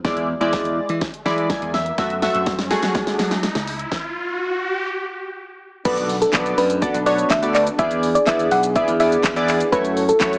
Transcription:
Already playing: riser
0.04 E2 G#3 E4 D5, kick, snare, closed hi-hat
0.17 closed hi-hat
0.41 E2 G#3 E4 D5, closed hi-hat
0.53 kick, snare, closed hi-hat
0.65 closed hi-hat
0.89 E3, closed hi-hat
1.01 kick, snare, closed hi-hat
1.14 closed hi-hat
1.25 E3 G#3 E4 D5 B5, snare
1.38 closed hi-hat
1.50 G#5, kick, snare, closed hi-hat
1.62 E2, closed hi-hat
1.74 E5, snare
1.86 closed hi-hat
1.98 F#2 A3 F#4 E5, kick, snare, closed hi-hat
2.10 closed hi-hat
2.22 A3 F#4 E5, snare, open hi-hat
2.35 F#2, closed hi-hat
2.46 kick, snare, closed hi-hat
2.59 snare, closed hi-hat
2.70 A3 F#4 G#4, snare, open hi-hat
2.83 F#3, snare, closed hi-hat
2.95 kick, snare, closed hi-hat
3.07 snare, closed hi-hat
3.19 F#3, snare, open hi-hat
3.31 snare, closed hi-hat
3.43 snare, closed hi-hat
3.55 C#2, snare, closed hi-hat
3.67 open hi-hat
3.79 closed hi-hat
3.92 kick, snare
5.85 B1 A3 B3 D4 F#4 A4 B4 D5, kick, closed hi-hat, crash, impact, shaker
5.97 closed hi-hat, shaker
6.09 open hi-hat, shaker
6.21 A4, closed hi-hat, shaker
6.33 B1 B3 F#4 A4 D5, kick, snare, clap, closed hi-hat, shaker
6.46 closed hi-hat, shaker
6.58 F#2 B4, open hi-hat, shaker
6.70 closed hi-hat, shaker
6.82 B3 F#4 A4 D5, kick, closed hi-hat, shaker
6.94 B1, closed hi-hat, shaker
7.06 B3 F#4 A4 C#5 D5, open hi-hat, shaker
7.18 closed hi-hat, shaker
7.30 D2 E5, kick, snare, clap, closed hi-hat, shaker
7.42 B3 F#4 A4 D5, closed hi-hat, shaker
7.55 D5, clap, open hi-hat, shaker
7.67 closed hi-hat, shaker
7.78 E2 E3 B3 D4 E4 G#4 D5 E5, kick, closed hi-hat, shaker
7.91 closed hi-hat, shaker
8.03 open hi-hat, shaker
8.15 D5, closed hi-hat, shaker
8.26 E2 B3 E4 G#4 D5 E5, kick, snare, clap, closed hi-hat, shaker
8.39 closed hi-hat, shaker
8.51 B1 F#5, open hi-hat, shaker
8.63 closed hi-hat, shaker
8.76 B3 E4 G#4 D5 E5, kick, closed hi-hat, shaker
8.88 E2, closed hi-hat, shaker
9.00 B3 E4 G#4 D5 E5, open hi-hat, shaker
9.12 closed hi-hat, shaker
9.23 E2, kick, snare, clap, closed hi-hat, shaker
9.36 B3 E4 G#4 D5, closed hi-hat, shaker
9.48 clap, open hi-hat, shaker
9.60 closed hi-hat, shaker
9.72 F#2 F#3 A3 E4 F#4 A4 B4 C#5, kick, closed hi-hat, shaker
9.85 closed hi-hat, shaker
9.97 open hi-hat, shaker
10.09 A4, closed hi-hat, shaker
10.20 F#2 A3 E4 F#4 C#5, kick, snare, clap, closed hi-hat, shaker
10.33 closed hi-hat, shaker

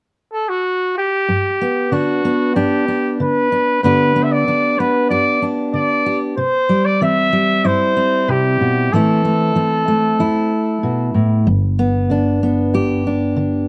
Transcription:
0.33 A4
0.49 F#4
0.98 G4
1.28 G2
1.61 B3
1.92 D3 D4 F#4
2.25 B3
2.56 G2 D4 G4
2.88 D4
3.20 D3 B4
3.52 D4
3.83 G2 D3 B3 D4 G4 B4
4.16 B3
4.23 E5
4.32 D5
4.47 D3 D4
4.79 B3 B4
5.10 G2 G4 D5
5.42 D4
5.74 D3 D5
6.06 G4
6.37 C3 C5
6.69 G3
6.86 D5
7.01 E3 C4 E5
7.33 G3
7.64 G2 E4 C5
7.96 C4
8.28 C3 G4
8.61 B2
8.93 A2 E3 A3 C4 E4 A4
9.25 A3
9.55 E3 C4
9.88 A3
10.19 E2 E4
10.83 B2
11.14 A2
11.47 G1 G2
11.79 B3
12.10 D3 D4
12.43 B3
12.74 G2 G4
13.07 D4
13.36 D3

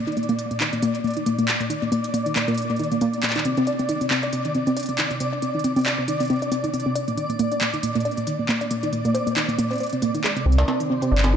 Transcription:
Already playing: D5
0.07 D#4, closed hi-hat
0.12 closed hi-hat
0.17 A#3, closed hi-hat
0.23 closed hi-hat
0.29 A#3, closed hi-hat
0.39 closed hi-hat
0.51 A#3, closed hi-hat
0.60 D#4, clap, closed hi-hat
0.73 A#3, closed hi-hat
0.82 A#3, closed hi-hat
0.95 closed hi-hat
1.04 A#3, closed hi-hat
1.07 closed hi-hat
1.10 closed hi-hat
1.14 D#4, closed hi-hat
1.17 closed hi-hat
1.26 A#3, closed hi-hat
1.38 A#3, closed hi-hat
1.48 clap, closed hi-hat
1.60 A#3, closed hi-hat
1.70 D#4, closed hi-hat
1.82 A#3, closed hi-hat
1.92 A#3, closed hi-hat
2.04 closed hi-hat
2.14 A#3, closed hi-hat
2.26 D#4, closed hi-hat
2.36 A#3, clap, closed hi-hat
2.48 A#3, closed hi-hat
2.54 closed hi-hat
2.58 closed hi-hat
2.70 A#3, closed hi-hat
2.76 closed hi-hat
2.79 D#4, closed hi-hat
2.84 closed hi-hat
2.92 A#3, closed hi-hat
3.01 A#3, closed hi-hat
3.13 closed hi-hat
3.23 A#3, clap, closed hi-hat
3.30 clap
3.35 D#4, clap, closed hi-hat
3.45 C4, closed hi-hat
3.57 C4, closed hi-hat
3.67 D5, closed hi-hat
3.79 C4, closed hi-hat
3.89 D#4, closed hi-hat
4.01 C4, closed hi-hat
4.11 C4, clap
4.23 D5, closed hi-hat
4.33 C4, closed hi-hat
4.45 D#4, closed hi-hat
4.55 C4, closed hi-hat
4.67 C4, closed hi-hat
4.77 D5, closed hi-hat
4.80 closed hi-hat
4.83 closed hi-hat
4.86 closed hi-hat
4.89 C4, closed hi-hat
4.98 D#4, clap, closed hi-hat
5.11 C4, closed hi-hat
5.20 C4, closed hi-hat
5.33 D5
5.42 C4, closed hi-hat
5.55 D#4
5.59 closed hi-hat
5.64 C4, closed hi-hat
5.76 C4, closed hi-hat
5.79 closed hi-hat
5.81 closed hi-hat
5.84 D5, clap, closed hi-hat
5.86 closed hi-hat
5.98 C4
6.08 D#4, closed hi-hat
6.20 C4, closed hi-hat
6.23 closed hi-hat
6.25 closed hi-hat
6.27 closed hi-hat
6.30 C4, closed hi-hat
6.36 closed hi-hat
6.39 closed hi-hat
6.42 D5, closed hi-hat
6.52 C4, closed hi-hat
6.64 D#4, closed hi-hat
6.74 C4, closed hi-hat
6.80 closed hi-hat
6.86 C4
6.95 D5, closed hi-hat
7.08 A#3, closed hi-hat
7.17 D#4, closed hi-hat
7.30 A#3, closed hi-hat
7.39 A#3, closed hi-hat
7.52 D5, closed hi-hat
7.61 A#3, clap, closed hi-hat
7.74 D#4, closed hi-hat
7.83 A#3, closed hi-hat
7.95 A#3, closed hi-hat
8.00 closed hi-hat
8.05 D5, closed hi-hat
8.11 closed hi-hat
8.17 A#3, closed hi-hat
8.27 D#4, closed hi-hat
8.39 A#3
8.49 A#3, clap
8.61 D5, closed hi-hat
8.71 A#3, closed hi-hat
8.83 D#4, closed hi-hat
8.93 A#3, closed hi-hat
9.05 A#3, closed hi-hat
9.14 C5, closed hi-hat
9.27 A#3, closed hi-hat
9.36 D#4, clap, closed hi-hat
9.49 A#3, closed hi-hat
9.58 A#3, closed hi-hat
9.71 C5, closed hi-hat
9.73 closed hi-hat
9.76 closed hi-hat
9.78 closed hi-hat
9.80 C5, closed hi-hat
9.83 closed hi-hat
9.87 closed hi-hat
9.89 closed hi-hat
9.93 C4, closed hi-hat
10.02 A#3, closed hi-hat
10.14 D#4, closed hi-hat
10.24 G#4, clap, closed hi-hat
10.36 C4, closed hi-hat
10.46 C2 C4 C5
10.52 closed hi-hat
10.58 D5, struck metal
10.68 C4, struck metal
10.80 closed hi-hat
10.90 C4
11.02 C4, closed hi-hat
11.12 G1 D5
11.18 clap
11.24 C4, closed hi-hat, struck metal

